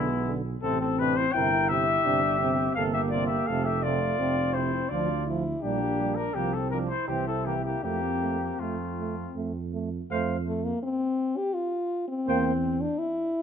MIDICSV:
0, 0, Header, 1, 6, 480
1, 0, Start_track
1, 0, Key_signature, -1, "major"
1, 0, Tempo, 714286
1, 907, Time_signature, 3, 2, 24, 8
1, 4269, Tempo, 750939
1, 6669, Tempo, 720288
1, 8878, End_track
2, 0, Start_track
2, 0, Title_t, "Trumpet"
2, 0, Program_c, 0, 56
2, 0, Note_on_c, 0, 64, 78
2, 225, Note_off_c, 0, 64, 0
2, 419, Note_on_c, 0, 69, 80
2, 534, Note_off_c, 0, 69, 0
2, 542, Note_on_c, 0, 69, 71
2, 665, Note_on_c, 0, 71, 79
2, 676, Note_off_c, 0, 69, 0
2, 782, Note_on_c, 0, 72, 75
2, 792, Note_off_c, 0, 71, 0
2, 890, Note_on_c, 0, 79, 83
2, 901, Note_off_c, 0, 72, 0
2, 1133, Note_on_c, 0, 76, 85
2, 1143, Note_off_c, 0, 79, 0
2, 1844, Note_off_c, 0, 76, 0
2, 1848, Note_on_c, 0, 77, 79
2, 1905, Note_off_c, 0, 77, 0
2, 1969, Note_on_c, 0, 76, 75
2, 2026, Note_off_c, 0, 76, 0
2, 2085, Note_on_c, 0, 74, 79
2, 2195, Note_off_c, 0, 74, 0
2, 2199, Note_on_c, 0, 76, 69
2, 2326, Note_on_c, 0, 77, 81
2, 2336, Note_off_c, 0, 76, 0
2, 2447, Note_off_c, 0, 77, 0
2, 2451, Note_on_c, 0, 76, 67
2, 2571, Note_on_c, 0, 74, 81
2, 2581, Note_off_c, 0, 76, 0
2, 3050, Note_on_c, 0, 72, 69
2, 3060, Note_off_c, 0, 74, 0
2, 3287, Note_on_c, 0, 74, 69
2, 3298, Note_off_c, 0, 72, 0
2, 3536, Note_off_c, 0, 74, 0
2, 3770, Note_on_c, 0, 67, 72
2, 4133, Note_on_c, 0, 70, 62
2, 4143, Note_off_c, 0, 67, 0
2, 4262, Note_on_c, 0, 67, 66
2, 4272, Note_off_c, 0, 70, 0
2, 4386, Note_on_c, 0, 69, 59
2, 4396, Note_off_c, 0, 67, 0
2, 4489, Note_off_c, 0, 69, 0
2, 4493, Note_on_c, 0, 70, 65
2, 4548, Note_off_c, 0, 70, 0
2, 4608, Note_on_c, 0, 72, 66
2, 4728, Note_off_c, 0, 72, 0
2, 4732, Note_on_c, 0, 67, 57
2, 4852, Note_off_c, 0, 67, 0
2, 4856, Note_on_c, 0, 69, 62
2, 4973, Note_on_c, 0, 67, 60
2, 4982, Note_off_c, 0, 69, 0
2, 5093, Note_off_c, 0, 67, 0
2, 5097, Note_on_c, 0, 67, 57
2, 5212, Note_off_c, 0, 67, 0
2, 5216, Note_on_c, 0, 67, 64
2, 5703, Note_on_c, 0, 65, 49
2, 5712, Note_off_c, 0, 67, 0
2, 6188, Note_off_c, 0, 65, 0
2, 6669, Note_on_c, 0, 77, 57
2, 6843, Note_off_c, 0, 77, 0
2, 8117, Note_on_c, 0, 79, 55
2, 8285, Note_off_c, 0, 79, 0
2, 8878, End_track
3, 0, Start_track
3, 0, Title_t, "Flugelhorn"
3, 0, Program_c, 1, 56
3, 0, Note_on_c, 1, 56, 70
3, 224, Note_off_c, 1, 56, 0
3, 426, Note_on_c, 1, 60, 74
3, 538, Note_off_c, 1, 60, 0
3, 541, Note_on_c, 1, 60, 57
3, 596, Note_off_c, 1, 60, 0
3, 670, Note_on_c, 1, 62, 62
3, 786, Note_off_c, 1, 62, 0
3, 794, Note_on_c, 1, 64, 62
3, 847, Note_off_c, 1, 64, 0
3, 915, Note_on_c, 1, 70, 75
3, 1145, Note_off_c, 1, 70, 0
3, 1160, Note_on_c, 1, 67, 67
3, 1855, Note_off_c, 1, 67, 0
3, 1859, Note_on_c, 1, 69, 80
3, 1975, Note_on_c, 1, 67, 65
3, 1985, Note_off_c, 1, 69, 0
3, 2097, Note_on_c, 1, 65, 62
3, 2107, Note_off_c, 1, 67, 0
3, 2213, Note_on_c, 1, 67, 67
3, 2223, Note_off_c, 1, 65, 0
3, 2337, Note_on_c, 1, 69, 75
3, 2347, Note_off_c, 1, 67, 0
3, 2453, Note_on_c, 1, 67, 66
3, 2463, Note_off_c, 1, 69, 0
3, 2577, Note_on_c, 1, 65, 69
3, 2587, Note_off_c, 1, 67, 0
3, 3059, Note_on_c, 1, 64, 57
3, 3069, Note_off_c, 1, 65, 0
3, 3296, Note_off_c, 1, 64, 0
3, 3300, Note_on_c, 1, 65, 65
3, 3537, Note_off_c, 1, 65, 0
3, 3785, Note_on_c, 1, 58, 58
3, 4147, Note_on_c, 1, 62, 59
3, 4157, Note_off_c, 1, 58, 0
3, 4265, Note_off_c, 1, 62, 0
3, 4269, Note_on_c, 1, 58, 63
3, 4383, Note_off_c, 1, 58, 0
3, 4389, Note_on_c, 1, 60, 46
3, 4501, Note_off_c, 1, 60, 0
3, 4504, Note_on_c, 1, 62, 52
3, 4617, Note_off_c, 1, 62, 0
3, 4621, Note_on_c, 1, 64, 62
3, 4737, Note_on_c, 1, 60, 61
3, 4746, Note_off_c, 1, 64, 0
3, 4852, Note_off_c, 1, 60, 0
3, 4856, Note_on_c, 1, 60, 50
3, 4972, Note_off_c, 1, 60, 0
3, 4976, Note_on_c, 1, 58, 50
3, 5030, Note_off_c, 1, 58, 0
3, 5094, Note_on_c, 1, 58, 46
3, 5213, Note_off_c, 1, 58, 0
3, 5217, Note_on_c, 1, 58, 56
3, 5699, Note_on_c, 1, 57, 43
3, 5708, Note_off_c, 1, 58, 0
3, 6186, Note_off_c, 1, 57, 0
3, 6669, Note_on_c, 1, 72, 53
3, 6843, Note_off_c, 1, 72, 0
3, 8112, Note_on_c, 1, 72, 58
3, 8282, Note_off_c, 1, 72, 0
3, 8878, End_track
4, 0, Start_track
4, 0, Title_t, "French horn"
4, 0, Program_c, 2, 60
4, 0, Note_on_c, 2, 59, 62
4, 253, Note_off_c, 2, 59, 0
4, 429, Note_on_c, 2, 60, 64
4, 881, Note_off_c, 2, 60, 0
4, 903, Note_on_c, 2, 64, 71
4, 1379, Note_on_c, 2, 62, 65
4, 1389, Note_off_c, 2, 64, 0
4, 1616, Note_off_c, 2, 62, 0
4, 1621, Note_on_c, 2, 60, 65
4, 1862, Note_on_c, 2, 58, 58
4, 1872, Note_off_c, 2, 60, 0
4, 2340, Note_on_c, 2, 57, 59
4, 2350, Note_off_c, 2, 58, 0
4, 2815, Note_on_c, 2, 60, 67
4, 2826, Note_off_c, 2, 57, 0
4, 3296, Note_off_c, 2, 60, 0
4, 3300, Note_on_c, 2, 62, 59
4, 3537, Note_off_c, 2, 62, 0
4, 3541, Note_on_c, 2, 64, 65
4, 3783, Note_on_c, 2, 62, 66
4, 3793, Note_off_c, 2, 64, 0
4, 4261, Note_off_c, 2, 62, 0
4, 4265, Note_on_c, 2, 60, 61
4, 4564, Note_off_c, 2, 60, 0
4, 4734, Note_on_c, 2, 64, 56
4, 5218, Note_on_c, 2, 60, 52
4, 5228, Note_off_c, 2, 64, 0
4, 6431, Note_off_c, 2, 60, 0
4, 6909, Note_on_c, 2, 57, 66
4, 7027, Note_on_c, 2, 58, 65
4, 7037, Note_off_c, 2, 57, 0
4, 7145, Note_off_c, 2, 58, 0
4, 7149, Note_on_c, 2, 60, 72
4, 7512, Note_on_c, 2, 67, 71
4, 7522, Note_off_c, 2, 60, 0
4, 7624, Note_on_c, 2, 65, 67
4, 7634, Note_off_c, 2, 67, 0
4, 7981, Note_off_c, 2, 65, 0
4, 7985, Note_on_c, 2, 60, 66
4, 8472, Note_on_c, 2, 62, 69
4, 8482, Note_off_c, 2, 60, 0
4, 8588, Note_on_c, 2, 64, 75
4, 8598, Note_off_c, 2, 62, 0
4, 8878, Note_off_c, 2, 64, 0
4, 8878, End_track
5, 0, Start_track
5, 0, Title_t, "Euphonium"
5, 0, Program_c, 3, 58
5, 178, Note_on_c, 3, 50, 52
5, 286, Note_off_c, 3, 50, 0
5, 424, Note_on_c, 3, 48, 53
5, 532, Note_off_c, 3, 48, 0
5, 665, Note_on_c, 3, 48, 53
5, 773, Note_off_c, 3, 48, 0
5, 907, Note_on_c, 3, 48, 57
5, 1015, Note_off_c, 3, 48, 0
5, 1144, Note_on_c, 3, 48, 48
5, 1252, Note_off_c, 3, 48, 0
5, 1381, Note_on_c, 3, 48, 55
5, 1489, Note_off_c, 3, 48, 0
5, 1626, Note_on_c, 3, 48, 57
5, 1733, Note_off_c, 3, 48, 0
5, 1860, Note_on_c, 3, 48, 54
5, 1967, Note_off_c, 3, 48, 0
5, 2107, Note_on_c, 3, 48, 54
5, 2214, Note_off_c, 3, 48, 0
5, 2344, Note_on_c, 3, 48, 53
5, 2451, Note_off_c, 3, 48, 0
5, 2585, Note_on_c, 3, 48, 51
5, 2692, Note_off_c, 3, 48, 0
5, 2822, Note_on_c, 3, 48, 51
5, 2929, Note_off_c, 3, 48, 0
5, 3064, Note_on_c, 3, 48, 50
5, 3171, Note_off_c, 3, 48, 0
5, 3308, Note_on_c, 3, 53, 54
5, 3415, Note_off_c, 3, 53, 0
5, 3551, Note_on_c, 3, 53, 50
5, 3658, Note_off_c, 3, 53, 0
5, 3789, Note_on_c, 3, 55, 54
5, 3897, Note_off_c, 3, 55, 0
5, 4035, Note_on_c, 3, 55, 43
5, 4143, Note_off_c, 3, 55, 0
5, 4275, Note_on_c, 3, 53, 46
5, 4377, Note_off_c, 3, 53, 0
5, 4507, Note_on_c, 3, 53, 45
5, 4610, Note_off_c, 3, 53, 0
5, 4742, Note_on_c, 3, 52, 42
5, 4844, Note_off_c, 3, 52, 0
5, 4975, Note_on_c, 3, 52, 42
5, 5077, Note_off_c, 3, 52, 0
5, 5221, Note_on_c, 3, 57, 43
5, 5323, Note_off_c, 3, 57, 0
5, 5462, Note_on_c, 3, 57, 36
5, 5564, Note_off_c, 3, 57, 0
5, 5708, Note_on_c, 3, 57, 42
5, 5811, Note_off_c, 3, 57, 0
5, 5959, Note_on_c, 3, 57, 39
5, 6061, Note_off_c, 3, 57, 0
5, 6193, Note_on_c, 3, 57, 40
5, 6295, Note_off_c, 3, 57, 0
5, 6431, Note_on_c, 3, 57, 42
5, 6534, Note_off_c, 3, 57, 0
5, 6671, Note_on_c, 3, 57, 57
5, 6844, Note_off_c, 3, 57, 0
5, 8112, Note_on_c, 3, 58, 58
5, 8282, Note_off_c, 3, 58, 0
5, 8878, End_track
6, 0, Start_track
6, 0, Title_t, "Tuba"
6, 0, Program_c, 4, 58
6, 0, Note_on_c, 4, 35, 60
6, 369, Note_off_c, 4, 35, 0
6, 428, Note_on_c, 4, 33, 65
6, 851, Note_off_c, 4, 33, 0
6, 909, Note_on_c, 4, 31, 71
6, 1329, Note_off_c, 4, 31, 0
6, 1385, Note_on_c, 4, 31, 63
6, 1805, Note_off_c, 4, 31, 0
6, 1859, Note_on_c, 4, 31, 70
6, 2284, Note_off_c, 4, 31, 0
6, 2346, Note_on_c, 4, 29, 69
6, 2767, Note_off_c, 4, 29, 0
6, 2819, Note_on_c, 4, 29, 61
6, 3245, Note_off_c, 4, 29, 0
6, 3301, Note_on_c, 4, 38, 64
6, 3727, Note_off_c, 4, 38, 0
6, 3784, Note_on_c, 4, 34, 66
6, 4213, Note_off_c, 4, 34, 0
6, 4268, Note_on_c, 4, 36, 53
6, 4632, Note_off_c, 4, 36, 0
6, 4741, Note_on_c, 4, 36, 55
6, 5164, Note_off_c, 4, 36, 0
6, 5220, Note_on_c, 4, 41, 55
6, 5649, Note_off_c, 4, 41, 0
6, 5703, Note_on_c, 4, 41, 46
6, 6132, Note_off_c, 4, 41, 0
6, 6187, Note_on_c, 4, 41, 56
6, 6614, Note_off_c, 4, 41, 0
6, 6671, Note_on_c, 4, 41, 61
6, 7076, Note_off_c, 4, 41, 0
6, 8116, Note_on_c, 4, 40, 70
6, 8514, Note_off_c, 4, 40, 0
6, 8878, End_track
0, 0, End_of_file